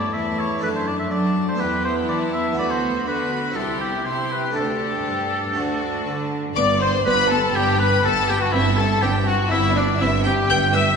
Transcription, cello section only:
0, 0, Header, 1, 2, 480
1, 0, Start_track
1, 0, Key_signature, 1, "major"
1, 0, Tempo, 487805
1, 616, Time_signature, 4, 2, 24, 8
1, 3017, Tempo, 500000
1, 6377, Tempo, 490998
1, 10676, End_track
2, 0, Start_track
2, 0, Title_t, "Cello section"
2, 0, Program_c, 0, 48
2, 0, Note_on_c, 0, 43, 59
2, 128, Note_off_c, 0, 43, 0
2, 137, Note_on_c, 0, 40, 63
2, 606, Note_off_c, 0, 40, 0
2, 612, Note_on_c, 0, 42, 56
2, 1093, Note_off_c, 0, 42, 0
2, 1094, Note_on_c, 0, 54, 61
2, 1561, Note_off_c, 0, 54, 0
2, 1575, Note_on_c, 0, 40, 58
2, 2044, Note_off_c, 0, 40, 0
2, 2054, Note_on_c, 0, 52, 64
2, 2524, Note_off_c, 0, 52, 0
2, 2528, Note_on_c, 0, 38, 54
2, 3003, Note_off_c, 0, 38, 0
2, 3017, Note_on_c, 0, 50, 55
2, 3482, Note_off_c, 0, 50, 0
2, 3487, Note_on_c, 0, 36, 60
2, 3964, Note_off_c, 0, 36, 0
2, 3967, Note_on_c, 0, 48, 60
2, 4437, Note_off_c, 0, 48, 0
2, 4449, Note_on_c, 0, 38, 54
2, 4928, Note_on_c, 0, 43, 47
2, 4931, Note_off_c, 0, 38, 0
2, 5404, Note_off_c, 0, 43, 0
2, 5414, Note_on_c, 0, 38, 54
2, 5887, Note_off_c, 0, 38, 0
2, 5896, Note_on_c, 0, 50, 59
2, 6366, Note_off_c, 0, 50, 0
2, 6378, Note_on_c, 0, 43, 81
2, 6802, Note_off_c, 0, 43, 0
2, 6857, Note_on_c, 0, 43, 77
2, 7281, Note_off_c, 0, 43, 0
2, 7339, Note_on_c, 0, 43, 82
2, 7762, Note_off_c, 0, 43, 0
2, 7818, Note_on_c, 0, 43, 77
2, 8243, Note_off_c, 0, 43, 0
2, 8302, Note_on_c, 0, 43, 75
2, 8722, Note_off_c, 0, 43, 0
2, 8778, Note_on_c, 0, 43, 76
2, 9200, Note_off_c, 0, 43, 0
2, 9260, Note_on_c, 0, 43, 82
2, 9683, Note_off_c, 0, 43, 0
2, 9741, Note_on_c, 0, 43, 89
2, 10163, Note_off_c, 0, 43, 0
2, 10216, Note_on_c, 0, 43, 85
2, 10639, Note_off_c, 0, 43, 0
2, 10676, End_track
0, 0, End_of_file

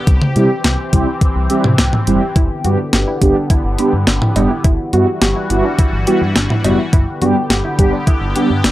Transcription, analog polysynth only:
0, 0, Header, 1, 2, 480
1, 0, Start_track
1, 0, Tempo, 571429
1, 61, Time_signature, 4, 2, 24, 8
1, 7322, End_track
2, 0, Start_track
2, 0, Title_t, "Analog polysynth"
2, 0, Program_c, 0, 90
2, 301, Note_on_c, 0, 55, 91
2, 301, Note_on_c, 0, 60, 81
2, 301, Note_on_c, 0, 64, 84
2, 301, Note_on_c, 0, 67, 102
2, 419, Note_off_c, 0, 55, 0
2, 419, Note_off_c, 0, 60, 0
2, 419, Note_off_c, 0, 64, 0
2, 419, Note_off_c, 0, 67, 0
2, 782, Note_on_c, 0, 55, 83
2, 782, Note_on_c, 0, 64, 79
2, 782, Note_on_c, 0, 67, 94
2, 783, Note_on_c, 0, 60, 77
2, 899, Note_off_c, 0, 64, 0
2, 900, Note_off_c, 0, 55, 0
2, 900, Note_off_c, 0, 60, 0
2, 900, Note_off_c, 0, 67, 0
2, 1261, Note_on_c, 0, 55, 91
2, 1261, Note_on_c, 0, 60, 85
2, 1261, Note_on_c, 0, 64, 81
2, 1261, Note_on_c, 0, 67, 99
2, 1378, Note_off_c, 0, 60, 0
2, 1379, Note_off_c, 0, 55, 0
2, 1379, Note_off_c, 0, 64, 0
2, 1379, Note_off_c, 0, 67, 0
2, 1742, Note_on_c, 0, 55, 91
2, 1742, Note_on_c, 0, 60, 85
2, 1742, Note_on_c, 0, 64, 83
2, 1742, Note_on_c, 0, 67, 98
2, 1859, Note_off_c, 0, 55, 0
2, 1859, Note_off_c, 0, 60, 0
2, 1859, Note_off_c, 0, 64, 0
2, 1860, Note_off_c, 0, 67, 0
2, 2221, Note_on_c, 0, 55, 93
2, 2221, Note_on_c, 0, 59, 85
2, 2221, Note_on_c, 0, 62, 83
2, 2221, Note_on_c, 0, 67, 98
2, 2339, Note_off_c, 0, 55, 0
2, 2339, Note_off_c, 0, 59, 0
2, 2339, Note_off_c, 0, 62, 0
2, 2339, Note_off_c, 0, 67, 0
2, 2703, Note_on_c, 0, 55, 84
2, 2703, Note_on_c, 0, 59, 78
2, 2703, Note_on_c, 0, 62, 79
2, 2703, Note_on_c, 0, 67, 92
2, 2820, Note_off_c, 0, 55, 0
2, 2820, Note_off_c, 0, 59, 0
2, 2820, Note_off_c, 0, 67, 0
2, 2821, Note_off_c, 0, 62, 0
2, 3182, Note_on_c, 0, 67, 99
2, 3183, Note_on_c, 0, 55, 89
2, 3183, Note_on_c, 0, 59, 85
2, 3183, Note_on_c, 0, 62, 83
2, 3300, Note_off_c, 0, 59, 0
2, 3300, Note_off_c, 0, 67, 0
2, 3301, Note_off_c, 0, 55, 0
2, 3301, Note_off_c, 0, 62, 0
2, 3662, Note_on_c, 0, 55, 89
2, 3662, Note_on_c, 0, 59, 82
2, 3662, Note_on_c, 0, 62, 81
2, 3662, Note_on_c, 0, 67, 98
2, 3779, Note_off_c, 0, 55, 0
2, 3780, Note_off_c, 0, 59, 0
2, 3780, Note_off_c, 0, 62, 0
2, 3780, Note_off_c, 0, 67, 0
2, 4142, Note_on_c, 0, 55, 89
2, 4142, Note_on_c, 0, 59, 84
2, 4142, Note_on_c, 0, 66, 102
2, 4143, Note_on_c, 0, 64, 83
2, 4260, Note_off_c, 0, 55, 0
2, 4260, Note_off_c, 0, 59, 0
2, 4260, Note_off_c, 0, 64, 0
2, 4260, Note_off_c, 0, 66, 0
2, 4623, Note_on_c, 0, 55, 87
2, 4623, Note_on_c, 0, 66, 95
2, 4624, Note_on_c, 0, 59, 80
2, 4624, Note_on_c, 0, 64, 78
2, 4741, Note_off_c, 0, 55, 0
2, 4741, Note_off_c, 0, 59, 0
2, 4741, Note_off_c, 0, 64, 0
2, 4741, Note_off_c, 0, 66, 0
2, 5103, Note_on_c, 0, 55, 88
2, 5103, Note_on_c, 0, 59, 83
2, 5103, Note_on_c, 0, 66, 99
2, 5104, Note_on_c, 0, 64, 79
2, 5220, Note_off_c, 0, 55, 0
2, 5221, Note_off_c, 0, 59, 0
2, 5221, Note_off_c, 0, 64, 0
2, 5221, Note_off_c, 0, 66, 0
2, 5582, Note_on_c, 0, 55, 92
2, 5582, Note_on_c, 0, 59, 80
2, 5582, Note_on_c, 0, 66, 99
2, 5583, Note_on_c, 0, 64, 84
2, 5699, Note_off_c, 0, 59, 0
2, 5700, Note_off_c, 0, 55, 0
2, 5700, Note_off_c, 0, 64, 0
2, 5700, Note_off_c, 0, 66, 0
2, 6062, Note_on_c, 0, 55, 90
2, 6062, Note_on_c, 0, 59, 84
2, 6062, Note_on_c, 0, 62, 83
2, 6062, Note_on_c, 0, 67, 103
2, 6179, Note_off_c, 0, 59, 0
2, 6179, Note_off_c, 0, 62, 0
2, 6179, Note_off_c, 0, 67, 0
2, 6180, Note_off_c, 0, 55, 0
2, 6542, Note_on_c, 0, 55, 86
2, 6542, Note_on_c, 0, 67, 95
2, 6543, Note_on_c, 0, 59, 77
2, 6543, Note_on_c, 0, 62, 77
2, 6660, Note_off_c, 0, 55, 0
2, 6660, Note_off_c, 0, 59, 0
2, 6660, Note_off_c, 0, 62, 0
2, 6660, Note_off_c, 0, 67, 0
2, 7021, Note_on_c, 0, 55, 91
2, 7021, Note_on_c, 0, 59, 84
2, 7021, Note_on_c, 0, 62, 83
2, 7021, Note_on_c, 0, 67, 96
2, 7138, Note_off_c, 0, 67, 0
2, 7139, Note_off_c, 0, 55, 0
2, 7139, Note_off_c, 0, 59, 0
2, 7139, Note_off_c, 0, 62, 0
2, 7322, End_track
0, 0, End_of_file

